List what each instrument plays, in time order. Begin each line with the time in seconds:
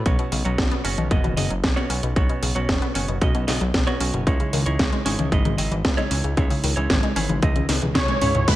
0.05 analog synth bass B1, clean electric guitar B2 B3 C#4 F#4 C#5, kick, closed hi-hat
0.19 synth arpeggio sound B2, closed hi-hat
0.32 analog synth bass B1, synth arpeggio sound C#3, open hi-hat
0.45 analog synth bass B1, clean electric guitar B2 B3 C#4 F#4 C#5, synth arpeggio sound F#3, closed hi-hat
0.58 analog synth bass B1, kick, snare, closed hi-hat
0.71 synth arpeggio sound B3, closed hi-hat
0.84 analog synth bass F#1, clean electric guitar B2 B3 C#4 F#4 C#5, synth arpeggio sound C#4, open hi-hat
0.98 analog synth bass B1, synth arpeggio sound B2, closed hi-hat, high tom
1.10 analog synth bass F#1, clean electric guitar B2 B3 C#4 F#4 D#5, kick, closed hi-hat
1.24 analog synth bass F#1, synth arpeggio sound B2, closed hi-hat, high tom
1.37 analog synth bass F#1, clean electric guitar B2 B3 C#4 F#4 D#5, synth arpeggio sound C#3, open hi-hat
1.50 analog synth bass F#1, synth arpeggio sound F#3, closed hi-hat
1.64 analog synth bass B1, kick, snare, closed hi-hat
1.76 clean electric guitar B2 B3 C#4 F#4 C#5, synth arpeggio sound B3, closed hi-hat
1.90 analog synth bass B1, synth arpeggio sound C#4, open hi-hat
2.03 analog synth bass B1, synth arpeggio sound B2, closed hi-hat
2.16 analog synth bass B1, clean electric guitar B2 B3 C#4 F#4 C#5, kick, closed hi-hat
2.29 synth arpeggio sound B2, closed hi-hat
2.43 analog synth bass B1, synth arpeggio sound C#3, open hi-hat
2.55 analog synth bass B1, clean electric guitar B2 B3 C#4 F#4 C#5, synth arpeggio sound F#3, closed hi-hat
2.69 analog synth bass F#1, kick, snare, closed hi-hat
2.82 synth arpeggio sound B3, closed hi-hat
2.94 analog synth bass F#1, clean electric guitar B2 B3 C#4 F#4 C#5, synth arpeggio sound C#4, open hi-hat
3.08 analog synth bass F#1, synth arpeggio sound B2, closed hi-hat
3.21 analog synth bass B1, clean electric guitar B2 B3 C#4 F#4 D#5, kick, closed hi-hat
3.35 analog synth bass B1, synth arpeggio sound B2, closed hi-hat
3.47 analog synth bass B1, clean electric guitar B2 B3 C#4 F#4 D#5, synth arpeggio sound C#3, snare, open hi-hat
3.61 analog synth bass B1, synth arpeggio sound F#3, closed hi-hat
3.74 analog synth bass B1, kick, snare, closed hi-hat
3.87 clean electric guitar B2 B3 C#4 F#4 C#5, synth arpeggio sound B3, closed hi-hat
4.00 analog synth bass B1, synth arpeggio sound C#4, open hi-hat
4.14 analog synth bass F#1, synth arpeggio sound B2, closed hi-hat
4.26 analog synth bass C#2, clean electric guitar C#3 G#3 D#4 E4 C#5, kick, closed hi-hat
4.40 synth arpeggio sound C#3, closed hi-hat
4.53 analog synth bass C#2, synth arpeggio sound D#3, open hi-hat
4.66 analog synth bass C#2, clean electric guitar C#3 G#3 D#4 E4 C#5, synth arpeggio sound E3, closed hi-hat
4.79 analog synth bass C#2, kick, snare, closed hi-hat
4.93 synth arpeggio sound G#3, closed hi-hat
5.05 analog synth bass G#1, clean electric guitar C#3 G#3 D#4 E4 C#5, synth arpeggio sound C#4, open hi-hat
5.19 analog synth bass C#2, synth arpeggio sound C#3, closed hi-hat, high tom
5.31 analog synth bass G#1, clean electric guitar C#3 G#3 D#4 E4 D#5, kick, closed hi-hat
5.45 analog synth bass G#1, synth arpeggio sound C#3, closed hi-hat, high tom
5.58 analog synth bass G#1, clean electric guitar C#3 G#3 D#4 E4 D#5, synth arpeggio sound D#3, open hi-hat
5.71 analog synth bass G#1, synth arpeggio sound E3, closed hi-hat
5.85 analog synth bass C#2, kick, snare, closed hi-hat
5.97 clean electric guitar C#3 G#3 D#4 E4 C#5, synth arpeggio sound G#3, closed hi-hat
6.11 analog synth bass C#2, synth arpeggio sound C#4, open hi-hat
6.24 analog synth bass C#2, synth arpeggio sound C#3, closed hi-hat
6.37 analog synth bass C#2, clean electric guitar C#3 G#3 D#4 E4 C#5, kick, closed hi-hat
6.50 synth arpeggio sound C#3, open hi-hat
6.64 analog synth bass C#2, synth arpeggio sound D#3, open hi-hat
6.76 analog synth bass C#2, clean electric guitar C#3 G#3 D#4 E4 C#5, synth arpeggio sound E3, closed hi-hat
6.90 analog synth bass G#1, kick, snare, closed hi-hat
7.03 synth arpeggio sound G#3, closed hi-hat
7.16 analog synth bass G#1, clean electric guitar C#3 G#3 D#4 E4 C#5, synth arpeggio sound C#4, open hi-hat, high tom
7.29 analog synth bass G#1, synth arpeggio sound C#3, closed hi-hat, high tom
7.42 analog synth bass C#2, clean electric guitar C#3 G#3 D#4 E4 D#5, kick, closed hi-hat, high tom
7.56 analog synth bass C#2, synth arpeggio sound C#3, closed hi-hat, high tom
7.69 analog synth bass C#2, synth arpeggio sound D#3, snare, open hi-hat
7.82 analog synth bass C#2, synth arpeggio sound E3, closed hi-hat, mid tom
7.95 analog synth bass C#2, clean electric guitar C#3 G#3 D#4 E4 C#5, analog synth lead C#5, kick, snare, closed hi-hat, mid tom
8.08 synth arpeggio sound G#3, closed hi-hat, mid tom
8.21 analog synth bass C#2, clean electric guitar C#3 G#3 D#4 E4 C#5, synth arpeggio sound C#4, mid tom, open hi-hat
8.35 analog synth bass C#2, synth arpeggio sound C#3, closed hi-hat, mid tom
8.47 analog synth bass C#2, synth arpeggio sound B2, clean electric guitar C#3 G#3 C#4 E4 B4, analog synth lead B4, kick, closed hi-hat, crash, downlifter